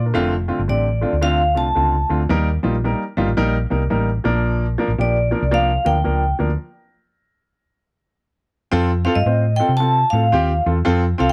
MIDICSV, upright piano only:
0, 0, Header, 1, 2, 480
1, 0, Start_track
1, 0, Tempo, 535236
1, 141, Time_signature, 4, 2, 24, 8
1, 10156, End_track
2, 0, Start_track
2, 0, Title_t, "Upright piano"
2, 0, Program_c, 0, 0
2, 50, Note_on_c, 0, 70, 66
2, 55, Note_on_c, 0, 62, 57
2, 123, Note_on_c, 0, 50, 108
2, 125, Note_on_c, 0, 57, 102
2, 131, Note_on_c, 0, 60, 103
2, 131, Note_on_c, 0, 65, 120
2, 280, Note_off_c, 0, 70, 0
2, 282, Note_off_c, 0, 62, 0
2, 289, Note_off_c, 0, 50, 0
2, 291, Note_off_c, 0, 57, 0
2, 294, Note_off_c, 0, 60, 0
2, 294, Note_off_c, 0, 65, 0
2, 431, Note_on_c, 0, 50, 80
2, 431, Note_on_c, 0, 60, 78
2, 433, Note_on_c, 0, 57, 76
2, 436, Note_on_c, 0, 65, 94
2, 531, Note_off_c, 0, 50, 0
2, 531, Note_off_c, 0, 60, 0
2, 532, Note_off_c, 0, 57, 0
2, 533, Note_off_c, 0, 65, 0
2, 608, Note_on_c, 0, 50, 72
2, 611, Note_on_c, 0, 57, 62
2, 617, Note_on_c, 0, 60, 66
2, 621, Note_on_c, 0, 67, 74
2, 773, Note_off_c, 0, 50, 0
2, 775, Note_off_c, 0, 57, 0
2, 777, Note_off_c, 0, 60, 0
2, 780, Note_off_c, 0, 67, 0
2, 909, Note_on_c, 0, 50, 77
2, 912, Note_on_c, 0, 57, 72
2, 914, Note_on_c, 0, 60, 70
2, 918, Note_on_c, 0, 65, 83
2, 1010, Note_off_c, 0, 50, 0
2, 1012, Note_off_c, 0, 57, 0
2, 1013, Note_off_c, 0, 60, 0
2, 1015, Note_off_c, 0, 65, 0
2, 1088, Note_on_c, 0, 50, 97
2, 1090, Note_on_c, 0, 57, 82
2, 1092, Note_on_c, 0, 60, 83
2, 1096, Note_on_c, 0, 65, 105
2, 1254, Note_off_c, 0, 50, 0
2, 1255, Note_off_c, 0, 57, 0
2, 1256, Note_off_c, 0, 60, 0
2, 1258, Note_off_c, 0, 65, 0
2, 1388, Note_on_c, 0, 50, 68
2, 1391, Note_on_c, 0, 60, 62
2, 1393, Note_on_c, 0, 57, 62
2, 1396, Note_on_c, 0, 65, 78
2, 1491, Note_off_c, 0, 50, 0
2, 1492, Note_off_c, 0, 60, 0
2, 1493, Note_off_c, 0, 57, 0
2, 1495, Note_off_c, 0, 65, 0
2, 1570, Note_on_c, 0, 50, 72
2, 1571, Note_on_c, 0, 57, 65
2, 1574, Note_on_c, 0, 60, 66
2, 1578, Note_on_c, 0, 65, 78
2, 1735, Note_off_c, 0, 50, 0
2, 1736, Note_off_c, 0, 57, 0
2, 1737, Note_off_c, 0, 60, 0
2, 1740, Note_off_c, 0, 65, 0
2, 1878, Note_on_c, 0, 50, 79
2, 1882, Note_on_c, 0, 57, 70
2, 1885, Note_on_c, 0, 60, 72
2, 1885, Note_on_c, 0, 65, 87
2, 1976, Note_off_c, 0, 50, 0
2, 1978, Note_off_c, 0, 57, 0
2, 1980, Note_off_c, 0, 60, 0
2, 1980, Note_off_c, 0, 65, 0
2, 2057, Note_on_c, 0, 55, 104
2, 2057, Note_on_c, 0, 58, 101
2, 2060, Note_on_c, 0, 63, 93
2, 2066, Note_on_c, 0, 70, 118
2, 2219, Note_off_c, 0, 55, 0
2, 2219, Note_off_c, 0, 58, 0
2, 2221, Note_off_c, 0, 63, 0
2, 2224, Note_off_c, 0, 70, 0
2, 2359, Note_on_c, 0, 55, 90
2, 2359, Note_on_c, 0, 58, 83
2, 2366, Note_on_c, 0, 65, 97
2, 2368, Note_on_c, 0, 63, 82
2, 2457, Note_off_c, 0, 55, 0
2, 2457, Note_off_c, 0, 58, 0
2, 2461, Note_off_c, 0, 63, 0
2, 2461, Note_off_c, 0, 65, 0
2, 2550, Note_on_c, 0, 55, 84
2, 2552, Note_on_c, 0, 58, 77
2, 2555, Note_on_c, 0, 63, 72
2, 2558, Note_on_c, 0, 70, 91
2, 2706, Note_off_c, 0, 55, 0
2, 2707, Note_off_c, 0, 58, 0
2, 2708, Note_off_c, 0, 63, 0
2, 2710, Note_off_c, 0, 70, 0
2, 2843, Note_on_c, 0, 55, 99
2, 2846, Note_on_c, 0, 58, 85
2, 2850, Note_on_c, 0, 63, 83
2, 2852, Note_on_c, 0, 65, 105
2, 2939, Note_off_c, 0, 55, 0
2, 2941, Note_off_c, 0, 58, 0
2, 2943, Note_off_c, 0, 63, 0
2, 2944, Note_off_c, 0, 65, 0
2, 3021, Note_on_c, 0, 55, 108
2, 3021, Note_on_c, 0, 58, 96
2, 3024, Note_on_c, 0, 63, 107
2, 3026, Note_on_c, 0, 70, 126
2, 3182, Note_off_c, 0, 55, 0
2, 3182, Note_off_c, 0, 58, 0
2, 3184, Note_off_c, 0, 63, 0
2, 3185, Note_off_c, 0, 70, 0
2, 3320, Note_on_c, 0, 55, 77
2, 3324, Note_on_c, 0, 58, 76
2, 3324, Note_on_c, 0, 63, 76
2, 3329, Note_on_c, 0, 70, 90
2, 3418, Note_off_c, 0, 55, 0
2, 3420, Note_off_c, 0, 58, 0
2, 3420, Note_off_c, 0, 63, 0
2, 3423, Note_off_c, 0, 70, 0
2, 3498, Note_on_c, 0, 55, 90
2, 3500, Note_on_c, 0, 58, 78
2, 3501, Note_on_c, 0, 63, 79
2, 3503, Note_on_c, 0, 70, 93
2, 3661, Note_off_c, 0, 55, 0
2, 3662, Note_off_c, 0, 58, 0
2, 3662, Note_off_c, 0, 63, 0
2, 3663, Note_off_c, 0, 70, 0
2, 3803, Note_on_c, 0, 53, 90
2, 3809, Note_on_c, 0, 58, 93
2, 3811, Note_on_c, 0, 62, 94
2, 3812, Note_on_c, 0, 70, 110
2, 4166, Note_off_c, 0, 53, 0
2, 4169, Note_off_c, 0, 58, 0
2, 4170, Note_off_c, 0, 62, 0
2, 4170, Note_off_c, 0, 70, 0
2, 4289, Note_on_c, 0, 53, 94
2, 4291, Note_on_c, 0, 58, 85
2, 4299, Note_on_c, 0, 62, 83
2, 4300, Note_on_c, 0, 70, 95
2, 4383, Note_off_c, 0, 53, 0
2, 4384, Note_off_c, 0, 58, 0
2, 4388, Note_off_c, 0, 62, 0
2, 4388, Note_off_c, 0, 70, 0
2, 4470, Note_on_c, 0, 53, 68
2, 4470, Note_on_c, 0, 58, 67
2, 4477, Note_on_c, 0, 62, 65
2, 4479, Note_on_c, 0, 67, 79
2, 4627, Note_off_c, 0, 53, 0
2, 4627, Note_off_c, 0, 58, 0
2, 4630, Note_off_c, 0, 62, 0
2, 4631, Note_off_c, 0, 67, 0
2, 4763, Note_on_c, 0, 53, 83
2, 4768, Note_on_c, 0, 62, 74
2, 4770, Note_on_c, 0, 70, 89
2, 4771, Note_on_c, 0, 58, 74
2, 4860, Note_off_c, 0, 53, 0
2, 4862, Note_off_c, 0, 62, 0
2, 4863, Note_off_c, 0, 70, 0
2, 4864, Note_off_c, 0, 58, 0
2, 4945, Note_on_c, 0, 53, 97
2, 4948, Note_on_c, 0, 62, 90
2, 4949, Note_on_c, 0, 70, 101
2, 4951, Note_on_c, 0, 58, 86
2, 5104, Note_off_c, 0, 53, 0
2, 5105, Note_off_c, 0, 62, 0
2, 5106, Note_off_c, 0, 70, 0
2, 5107, Note_off_c, 0, 58, 0
2, 5244, Note_on_c, 0, 53, 69
2, 5250, Note_on_c, 0, 58, 67
2, 5252, Note_on_c, 0, 70, 81
2, 5254, Note_on_c, 0, 62, 67
2, 5340, Note_off_c, 0, 53, 0
2, 5343, Note_off_c, 0, 58, 0
2, 5344, Note_off_c, 0, 70, 0
2, 5345, Note_off_c, 0, 62, 0
2, 5417, Note_on_c, 0, 58, 72
2, 5420, Note_on_c, 0, 53, 70
2, 5423, Note_on_c, 0, 62, 70
2, 5425, Note_on_c, 0, 70, 80
2, 5580, Note_off_c, 0, 58, 0
2, 5581, Note_off_c, 0, 53, 0
2, 5583, Note_off_c, 0, 62, 0
2, 5584, Note_off_c, 0, 70, 0
2, 5729, Note_on_c, 0, 53, 80
2, 5729, Note_on_c, 0, 58, 72
2, 5734, Note_on_c, 0, 62, 74
2, 5737, Note_on_c, 0, 70, 84
2, 5822, Note_off_c, 0, 53, 0
2, 5822, Note_off_c, 0, 58, 0
2, 5825, Note_off_c, 0, 62, 0
2, 5826, Note_off_c, 0, 70, 0
2, 7815, Note_on_c, 0, 60, 121
2, 7824, Note_on_c, 0, 65, 106
2, 7825, Note_on_c, 0, 69, 120
2, 7977, Note_off_c, 0, 60, 0
2, 7981, Note_off_c, 0, 65, 0
2, 7981, Note_off_c, 0, 69, 0
2, 8115, Note_on_c, 0, 60, 103
2, 8123, Note_on_c, 0, 65, 97
2, 8129, Note_on_c, 0, 69, 114
2, 8213, Note_off_c, 0, 60, 0
2, 8217, Note_off_c, 0, 65, 0
2, 8220, Note_off_c, 0, 69, 0
2, 8305, Note_on_c, 0, 60, 76
2, 8309, Note_on_c, 0, 65, 66
2, 8311, Note_on_c, 0, 72, 78
2, 8461, Note_off_c, 0, 60, 0
2, 8463, Note_off_c, 0, 65, 0
2, 8464, Note_off_c, 0, 72, 0
2, 8606, Note_on_c, 0, 60, 80
2, 8606, Note_on_c, 0, 65, 73
2, 8612, Note_on_c, 0, 69, 93
2, 8697, Note_off_c, 0, 65, 0
2, 8698, Note_off_c, 0, 60, 0
2, 8701, Note_off_c, 0, 69, 0
2, 8787, Note_on_c, 0, 60, 81
2, 8787, Note_on_c, 0, 65, 66
2, 8791, Note_on_c, 0, 69, 83
2, 8941, Note_off_c, 0, 60, 0
2, 8941, Note_off_c, 0, 65, 0
2, 8943, Note_off_c, 0, 69, 0
2, 9089, Note_on_c, 0, 60, 73
2, 9090, Note_on_c, 0, 65, 61
2, 9098, Note_on_c, 0, 69, 81
2, 9178, Note_off_c, 0, 60, 0
2, 9179, Note_off_c, 0, 65, 0
2, 9183, Note_off_c, 0, 69, 0
2, 9257, Note_on_c, 0, 60, 102
2, 9262, Note_on_c, 0, 65, 91
2, 9267, Note_on_c, 0, 67, 115
2, 9415, Note_off_c, 0, 60, 0
2, 9417, Note_off_c, 0, 65, 0
2, 9420, Note_off_c, 0, 67, 0
2, 9561, Note_on_c, 0, 60, 77
2, 9562, Note_on_c, 0, 65, 77
2, 9566, Note_on_c, 0, 69, 85
2, 9653, Note_off_c, 0, 60, 0
2, 9654, Note_off_c, 0, 65, 0
2, 9656, Note_off_c, 0, 69, 0
2, 9728, Note_on_c, 0, 60, 118
2, 9732, Note_on_c, 0, 65, 109
2, 9735, Note_on_c, 0, 69, 122
2, 9890, Note_off_c, 0, 60, 0
2, 9891, Note_off_c, 0, 65, 0
2, 9893, Note_off_c, 0, 69, 0
2, 10028, Note_on_c, 0, 60, 107
2, 10037, Note_on_c, 0, 65, 91
2, 10038, Note_on_c, 0, 69, 106
2, 10126, Note_off_c, 0, 60, 0
2, 10131, Note_off_c, 0, 65, 0
2, 10131, Note_off_c, 0, 69, 0
2, 10156, End_track
0, 0, End_of_file